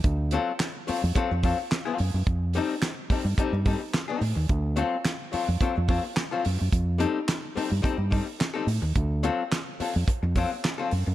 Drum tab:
HH |xxxoxoxo|xoxoxoxo|xxxoxoxo|xxxoxoxo|
CP |--x---x-|--x---x-|--x---x-|--x---x-|
SD |--o---o-|--o---o-|--o---o-|--o---o-|
BD |o---oo--|o--ooo--|o---oo--|o---oo--|

HH |xxxoxoxo|
CP |--x---x-|
SD |--o---o-|
BD |o---oo--|